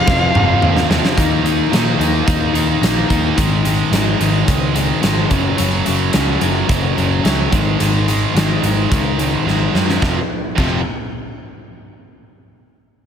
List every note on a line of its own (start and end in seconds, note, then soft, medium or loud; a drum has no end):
0.00 0.86 F5 loud
0.07 0.27 F1 medium
0.07 0.33 F2 medium
0.07 0.33 C3 loud
0.07 0.34 F3 loud
0.07 kick loud
0.07 snare medium
0.34 0.55 F1 loud
0.34 0.59 F2 medium
0.34 0.60 C3 medium
0.34 0.60 F3 loud
0.34 mid tom medium
0.60 1.01 D#2 medium
0.60 0.88 F2 medium
0.60 0.89 C3 medium
0.60 0.89 F3 medium
0.60 mid tom loud
0.77 snare medium
0.89 1.15 F2 medium
0.89 1.16 C3 medium
0.89 1.16 F3 loud
0.89 snare loud
1.05 snare loud
1.17 1.39 D#2 medium
1.17 1.43 D#3 loud
1.17 1.44 A#3 medium
1.17 1.45 D#4 loud
1.17 kick loud
1.17 closed hi-hat medium
1.44 1.65 D#2 medium
1.44 1.70 D#3 medium
1.44 1.71 A#3 medium
1.44 1.72 D#4 medium
1.44 closed hi-hat medium
1.72 1.93 A#2 medium
1.72 1.98 D#3 medium
1.72 1.98 A#3 medium
1.72 1.98 D#4 medium
1.72 snare loud
1.72 closed hi-hat medium
1.99 2.21 D#2 medium
1.99 2.25 D#3 loud
1.99 2.25 A#3 medium
1.99 2.25 D#4 loud
1.99 closed hi-hat medium
2.26 2.49 D#2 medium
2.26 2.53 D#3 medium
2.26 2.53 A#3 medium
2.26 2.53 D#4 medium
2.26 kick loud
2.26 closed hi-hat medium
2.52 2.75 D#2 medium
2.52 2.80 D#3 medium
2.52 2.80 A#3 medium
2.52 2.81 D#4 medium
2.52 closed hi-hat medium
2.81 3.03 A#1 medium
2.81 3.07 D#3 medium
2.81 3.08 A#3 medium
2.81 3.09 D#4 medium
2.81 snare loud
2.81 closed hi-hat medium
3.09 3.31 D#2 medium
3.09 3.35 D#3 medium
3.09 3.35 A#3 medium
3.09 3.36 D#4 medium
3.09 kick medium
3.09 closed hi-hat medium
3.36 3.80 G#1 medium
3.36 3.62 G#2 medium
3.36 3.64 D#3 loud
3.36 3.65 G#3 loud
3.36 kick medium
3.36 closed hi-hat medium
3.64 3.90 G#2 medium
3.64 3.91 D#3 medium
3.64 3.92 G#3 medium
3.64 closed hi-hat medium
3.91 4.13 G#1 medium
3.91 4.19 G#2 medium
3.91 4.19 D#3 medium
3.91 4.19 G#3 medium
3.91 snare medium
3.91 closed hi-hat medium
4.20 4.42 G#1 medium
4.20 4.48 G#2 medium
4.20 4.48 D#3 loud
4.20 4.48 G#3 loud
4.20 closed hi-hat medium
4.48 4.91 C#2 medium
4.48 4.73 G#2 medium
4.48 4.74 D#3 medium
4.48 4.74 G#3 medium
4.48 kick loud
4.48 closed hi-hat medium
4.74 5.01 G#2 medium
4.74 5.02 D#3 medium
4.74 5.02 G#3 medium
4.74 closed hi-hat medium
5.02 5.24 G#1 medium
5.02 5.28 G#2 medium
5.02 5.29 D#3 medium
5.02 5.29 G#3 medium
5.02 snare loud
5.02 closed hi-hat medium
5.30 5.52 F#1 medium
5.30 5.56 F#2 medium
5.30 5.57 C#3 medium
5.30 5.57 F#3 medium
5.30 kick medium
5.30 closed hi-hat medium
5.57 5.80 F#1 medium
5.57 5.84 F#2 medium
5.57 5.85 C#3 medium
5.57 5.85 F#3 loud
5.57 closed hi-hat medium
5.85 6.08 F#1 medium
5.85 6.12 F#2 medium
5.85 6.12 C#3 medium
5.85 6.12 F#3 medium
5.85 closed hi-hat medium
6.13 6.35 C#2 medium
6.13 6.39 F#2 medium
6.13 6.40 C#3 medium
6.13 6.41 F#3 medium
6.13 snare loud
6.13 closed hi-hat medium
6.41 6.63 F#1 medium
6.41 6.67 F#2 loud
6.41 6.67 C#3 medium
6.41 6.68 F#3 loud
6.41 closed hi-hat medium
6.68 6.91 F#1 medium
6.68 6.95 F#2 medium
6.68 6.96 C#3 medium
6.68 6.96 F#3 medium
6.68 kick loud
6.68 closed hi-hat medium
6.96 7.19 F#1 medium
6.96 7.22 F#2 medium
6.96 7.23 C#3 medium
6.96 7.23 F#3 medium
6.96 closed hi-hat soft
7.23 7.46 C#2 medium
7.23 7.50 F#2 medium
7.23 7.50 C#3 medium
7.23 7.50 F#3 medium
7.23 snare loud
7.23 closed hi-hat medium
7.50 7.74 G#1 medium
7.50 7.78 G#2 medium
7.50 7.78 D#3 medium
7.50 7.79 G#3 loud
7.50 kick medium
7.50 closed hi-hat medium
7.79 8.23 G#1 medium
7.79 8.06 G#2 medium
7.79 8.07 D#3 medium
7.79 8.07 G#3 loud
7.79 closed hi-hat medium
8.07 8.33 G#2 medium
8.07 8.34 D#3 medium
8.07 8.34 G#3 medium
8.07 closed hi-hat medium
8.34 8.56 G#1 medium
8.34 8.61 G#2 medium
8.34 8.62 D#3 medium
8.34 8.62 G#3 medium
8.34 snare medium
8.34 closed hi-hat medium
8.62 8.84 G#1 medium
8.62 8.89 G#2 loud
8.62 8.89 D#3 medium
8.62 8.91 G#3 loud
8.62 closed hi-hat medium
8.90 9.34 C#2 medium
8.90 9.16 G#2 medium
8.90 9.17 D#3 medium
8.90 9.18 G#3 medium
8.90 kick loud
8.90 closed hi-hat medium
9.18 9.44 G#2 medium
9.18 9.45 D#3 medium
9.18 9.46 G#3 medium
9.18 closed hi-hat medium
9.45 9.68 G#1 medium
9.45 9.72 G#2 medium
9.45 9.72 D#3 medium
9.45 9.73 G#3 medium
9.45 snare soft
9.73 9.96 F#2 medium
9.73 9.99 G#2 medium
9.73 10.00 D#3 medium
9.73 10.00 G#3 medium
9.73 snare medium
9.89 snare medium
10.01 10.18 F1 medium
10.01 10.18 F2 medium
10.01 10.19 C3 medium
10.01 10.19 F3 medium
10.01 kick medium
10.01 snare medium
10.57 10.83 F1 medium
10.57 10.79 F2 medium
10.57 10.80 C3 medium
10.57 10.80 F3 medium
10.57 kick medium
10.57 crash medium